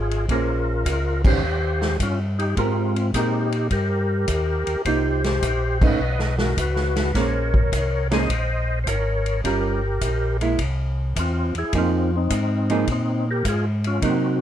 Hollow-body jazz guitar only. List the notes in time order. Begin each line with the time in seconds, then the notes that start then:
0.30 A#3 C#4 G#4 C5
1.25 D#3 C#4 G4 C5
2.57 G#3 C4 G4 A#4
3.15 G#3 C4 G4 A#4
4.87 A#3 D#4 F4
5.82 A3 C#4 D#4
7.15 A#3 C#4 G#4 C5
8.11 A#3 C#4 G#4 C5
9.44 G3 C#4 F4 A#4
10.41 G#3 A#3 E4
11.74 F3 A#3 D#4 G#4
12.70 F3 A#3 D#4 G#4
14.02 F#3 A#3 D#4